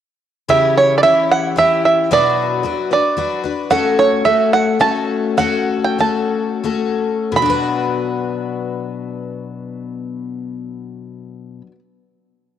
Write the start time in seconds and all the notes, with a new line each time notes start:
0.49 C#3 E3 C#4 E4 G4 E5
0.77 C#5
0.98 D5
1.03 E3 C#4 E4 G4 E5
1.31 F#5
1.56 E3 C#4 E4 G4 E5
1.85 E5
2.11 B2 F#3 D4 F#4 B4 D5
2.63 F#3 D4 F#4 B4
2.91 D4 F#4 B4 D5
3.17 F#3 D4 F#4 B4
3.44 D4 F#4 B4
3.70 A3 C#4 F#4 A4 F#5
3.99 C#5
4.25 A3 C#4 F#4 A4 E5
4.53 F#5
4.79 A3 C#4 F#4 A4 A5
5.37 A3 C#4 F#4 A4 F#5
5.84 G5
5.98 A3 C#4 F#4 A4 A5
6.64 A3 C#4 F#4 A4
7.32 B2
7.36 F#3 B5
7.42 D4 F#4
7.50 B4